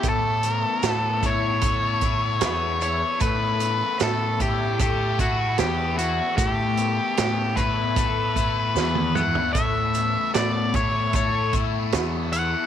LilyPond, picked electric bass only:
\new Staff \with { instrumentName = "Picked electric bass" } { \clef bass \time 4/4 \key a \mixolydian \tempo 4 = 76 a,4 a,2 e,4 | a,4 a,2 e,4 | a,4 a,2 e,4 | a,4 a,2 e,4 | }